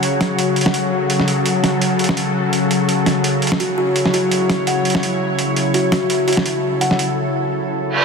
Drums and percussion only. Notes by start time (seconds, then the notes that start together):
0.03 closed hi-hat
0.21 snare, closed hi-hat
0.39 closed hi-hat
0.56 closed hi-hat
0.61 closed hi-hat
0.66 snare
0.74 closed hi-hat
1.10 closed hi-hat
1.20 snare
1.28 closed hi-hat
1.46 closed hi-hat
1.64 snare, closed hi-hat
1.82 closed hi-hat
1.99 closed hi-hat
2.04 closed hi-hat
2.09 snare
2.17 closed hi-hat
2.53 closed hi-hat
2.71 closed hi-hat
2.89 closed hi-hat
3.06 snare, closed hi-hat
3.24 closed hi-hat
3.42 closed hi-hat
3.47 closed hi-hat
3.52 snare
3.60 closed hi-hat
3.96 closed hi-hat
4.06 snare
4.14 closed hi-hat
4.32 closed hi-hat
4.49 snare, closed hi-hat
4.67 closed hi-hat
4.85 closed hi-hat
4.90 closed hi-hat
4.95 snare
5.03 closed hi-hat
5.39 closed hi-hat
5.56 closed hi-hat
5.74 closed hi-hat
5.92 snare, closed hi-hat
6.10 closed hi-hat
6.28 closed hi-hat
6.33 closed hi-hat
6.37 snare
6.46 closed hi-hat
6.81 closed hi-hat
6.91 snare
6.99 closed hi-hat